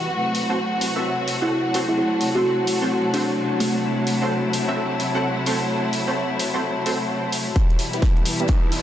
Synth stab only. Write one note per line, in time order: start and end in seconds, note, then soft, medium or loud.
0.49 0.60 C4 medium
0.49 0.60 F#4 medium
0.49 0.60 A4 medium
0.49 0.60 C5 medium
0.96 1.06 C4 medium
0.96 1.06 F#4 medium
0.96 1.06 A4 medium
0.96 1.06 E5 medium
1.42 1.53 C4 medium
1.42 1.53 F#4 medium
1.42 1.53 A4 medium
1.42 1.53 F#5 loud
1.74 1.84 C4 medium
1.74 1.84 F#4 medium
1.74 1.84 A4 medium
1.74 1.84 C5 loud
2.35 2.41 C4 medium
2.35 2.41 F#4 medium
2.35 2.41 A4 medium
2.35 2.41 C5 medium
2.82 2.88 C4 medium
2.82 2.88 F#4 medium
2.82 2.88 A4 medium
2.82 2.88 C5 medium
3.14 3.24 C4 medium
3.14 3.24 F#4 medium
3.14 3.24 A4 medium
3.14 3.24 C5 loud
4.21 4.32 C4 medium
4.21 4.32 F#4 medium
4.21 4.32 A4 medium
4.21 4.32 C5 medium
4.68 4.78 C4 medium
4.68 4.78 F#4 medium
4.68 4.78 A4 medium
4.68 4.78 E5 medium
5.14 5.25 C4 medium
5.14 5.25 F#4 medium
5.14 5.25 A4 medium
5.14 5.25 F#5 loud
5.47 5.57 C4 medium
5.47 5.57 F#4 medium
5.47 5.57 A4 medium
5.47 5.57 C5 loud
6.07 6.14 C4 medium
6.07 6.14 F#4 medium
6.07 6.14 A4 medium
6.07 6.14 C5 medium
6.54 6.60 C4 medium
6.54 6.60 F#4 medium
6.54 6.60 A4 medium
6.54 6.60 C5 medium
6.86 6.96 C4 medium
6.86 6.96 F#4 medium
6.86 6.96 A4 medium
6.86 6.96 C5 loud
7.93 8.04 B3 medium
7.93 8.04 E4 medium
7.93 8.04 G4 medium
7.93 8.04 B4 medium
8.40 8.50 B3 medium
8.40 8.50 E4 medium
8.40 8.50 G4 medium
8.40 8.50 D5 medium